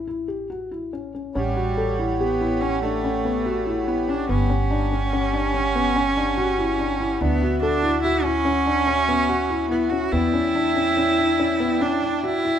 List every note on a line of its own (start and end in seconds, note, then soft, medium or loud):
0.00 1.31 A1 medium
0.07 0.26 E4 medium
0.28 0.47 G4 medium
0.50 0.69 F#4 medium
0.71 0.90 E4 medium
0.93 1.12 C#4 medium
1.15 1.33 C#4 medium
1.35 4.26 A1 medium
1.35 2.16 G3 medium
1.35 1.54 C#4 medium
1.35 4.27 G4 medium
1.35 4.27 C#5 medium
1.35 4.27 F#5 medium
1.35 10.09 B5 medium
1.56 1.76 F#4 medium
1.77 1.97 A4 medium
1.99 2.18 E4 medium
2.20 2.62 B3 medium
2.20 2.39 G4 medium
2.41 2.60 E4 medium
2.61 2.81 C#4 loud
2.61 2.81 C#4 medium
2.82 3.89 A3 loud
2.82 3.02 D4 medium
3.04 3.23 C#4 medium
3.25 3.44 B3 medium
3.46 3.65 F#4 medium
3.67 3.86 E4 medium
3.87 4.10 B3 medium
3.87 4.07 E4 medium
4.08 4.27 C#4 medium
4.08 4.28 D4 medium
4.29 7.17 G1 medium
4.29 4.48 B3 medium
4.29 7.22 C#4 loud
4.29 7.18 G4 medium
4.29 7.18 F#5 medium
4.50 4.69 C#4 medium
4.71 4.90 D4 medium
4.92 5.11 C#4 medium
5.13 5.32 C#4 medium
5.33 5.52 D4 medium
5.54 5.73 C#4 medium
5.75 5.94 B3 medium
5.96 6.15 C#4 medium
6.17 6.36 D4 medium
6.37 6.56 F#4 medium
6.59 6.77 E4 medium
6.79 6.98 D4 medium
7.00 7.19 E4 medium
7.20 10.09 D2 medium
7.20 7.61 B3 loud
7.20 7.40 D4 loud
7.20 10.09 F#4 medium
7.20 10.10 E5 medium
7.42 7.61 F#4 medium
7.61 8.00 D4 loud
7.61 7.81 A4 medium
7.83 8.02 E4 medium
8.02 8.25 E4 loud
8.02 8.23 F#4 medium
8.23 9.69 C#4 loud
8.23 8.44 E4 medium
8.45 8.64 C#4 medium
8.66 8.85 D4 medium
8.87 9.06 C#4 medium
9.08 9.27 B3 medium
9.29 9.48 F#4 medium
9.50 9.69 E4 medium
9.70 9.91 B3 loud
9.70 9.90 E4 medium
9.90 10.11 C#4 medium
9.90 10.13 F#4 loud
10.12 12.59 E2 medium
10.12 10.32 B3 medium
10.12 11.83 E4 loud
10.12 12.59 E4 medium
10.12 12.59 D5 medium
10.12 12.59 G5 medium
10.34 10.52 C#4 medium
10.55 10.74 D4 medium
10.76 10.95 C#4 medium
10.97 11.16 C#4 medium
11.18 11.37 D4 medium
11.39 11.58 C#4 medium
11.60 11.79 B3 medium
11.80 12.00 C#4 medium
11.80 12.25 D4 loud
12.02 12.21 D4 medium
12.23 12.59 E4 loud
12.23 12.42 F#4 medium
12.45 12.59 E4 medium